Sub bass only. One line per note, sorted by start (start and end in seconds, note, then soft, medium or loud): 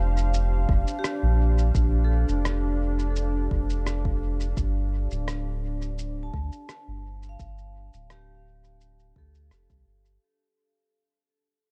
0.00 0.66 F1 medium
0.69 0.85 F1 loud
1.23 1.71 A#1 medium
1.75 2.25 A#1 loud
2.28 3.48 F1 medium
3.51 4.54 F1 medium
4.57 5.07 G1 loud
5.11 6.30 D1 medium
6.34 6.50 D2 medium
6.88 7.36 G1 medium
7.39 7.90 G1 loud
7.93 9.13 D1 loud
9.16 9.51 D2 medium
9.51 9.68 F1 medium
9.70 9.85 C2 medium
9.87 10.18 G1 medium